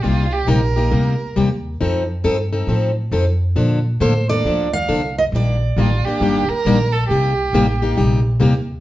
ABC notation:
X:1
M:4/4
L:1/8
Q:"Swing" 1/4=136
K:Cdor
V:1 name="Steel-string acoustic guitar"
z8 | z8 | z2 c d2 f2 e | d3 z4 z |
z8 |]
V:2 name="Violin"
F G B4 z2 | z8 | z8 | z2 F G2 B2 A |
G4 z4 |]
V:3 name="Steel-string acoustic guitar"
[C,G,B,EG] z [C,G,B,EG] [B,EG] [C,G,B,EG] z [C,G,B,EG] z | [F,CEA] z [F,CEA] [CEA] [F,CEA] z [F,CEA] z | [D,F,B,DA] z [D,F,B,DA] [B,DA] [D,F,B,DA] z [D,F,B,DA] z | [E,G,B,DG] z [E,G,B,DG] [B,DG] [E,G,B,DG] z [E,G,B,DG] z |
[C,G,B,EG] z [C,G,B,EG] [B,EG] [C,G,B,EG] z [C,G,B,EG] z |]
V:4 name="Upright bass" clef=bass
C,,2 B,,,2 D,,2 E,,2 | F,,2 G,,2 A,,2 F,,2 | B,,2 A,,2 D,,2 C,,2 | B,,,2 A,,, z G,,, z B,,,2 |
C,,2 A,,,2 B,,,2 E,,2 |]